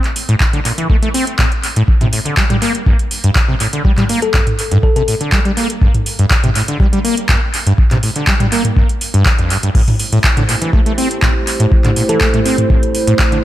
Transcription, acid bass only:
0.29 A2
0.53 D3
0.65 A#2
0.78 E3
0.90 A3
1.02 A3
1.14 C4
1.39 A2
1.76 A2
2.01 C3
2.13 A2
2.25 D3
2.37 G3
2.50 G3
2.62 A#3
2.86 G2
3.24 G2
3.48 C3
3.60 A2
3.73 D3
3.85 G3
3.98 G3
4.09 A#3
4.34 G2
4.71 G2
4.96 C3
5.08 A2
5.21 D3
5.32 G3
5.45 G3
5.57 A#3
5.82 G2
6.19 G2
6.44 C3
6.55 A2
6.68 D3
6.80 G3
6.93 G3
7.04 A#3
7.29 G2
7.66 G2
7.91 C3
8.03 A2
8.16 D3
8.27 G3
8.40 G3
8.52 A#3
8.77 G2
9.14 G2
9.39 F2
9.50 G2
9.63 G2
9.75 A2
10.12 A2
10.37 D3
10.49 A#2
10.62 E3
10.73 A3
10.86 A3
10.98 C4
11.22 A2
11.60 A2
11.84 D3
11.96 A#2
12.09 E3
12.21 A3
12.34 A3
12.46 C4
12.70 A2
13.07 A2
13.32 D3

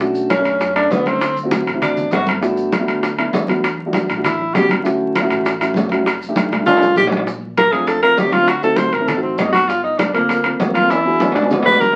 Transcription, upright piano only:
0.00 A3 C#4 D4 F#4
0.38 A3 C#4 D4 A4
0.75 A3 C#4 D4 A4
1.05 A3 C#4 D4 E4
1.43 A3 C4 E4 F#4
1.74 A3 C4 E4 F#4
2.12 A3 C4 E4 A4
2.41 A3 B3 D4 F#4
2.79 A3 B3 D4 F#4
3.18 A3 B3 D4 E4
3.48 A3 B3 D4 F#4
3.85 G3 A3 D4 F#4
4.16 G3 A3 D4 F#4
4.54 G3 B3 C#4 F#4
4.83 A3 C#4 E4 F#4
5.22 A3 C#4 E4 F#4
5.60 A3 C#4 E4 F#4
5.91 A3 C#4 E4 F#4
6.28 A3 D4 D#4 G4
6.59 A3 D4 D#4 G4
6.97 A3 D4 D#4 G4
7.72 A3 C4 D4 F4
8.03 A3 C4 D4 F4
8.26 A3 C4 D4 G4
8.42 A3 C4 D4 F4
8.62 A3 C4 D#4 F#4
9.00 A3 C4 D#4 A4
9.15 A3 C4 D#4 F#4
10.14 A#3 C4 F4 A4
10.44 A#3 C4 F4 A4
10.68 A#3 C4 F4 A#4
10.82 A#3 C4 F4 A4
11.05 B3 D4 F#4 G#4
11.44 B3 D4 F#4 B4
11.58 B3 D4 F#4 B4

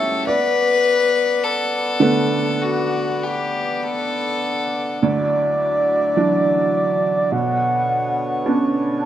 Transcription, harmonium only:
Already playing: A3 G4 C#5
0.28 B3 D5 F#5
5.05 F#3 E4 D5
7.33 D3 B3 C#5

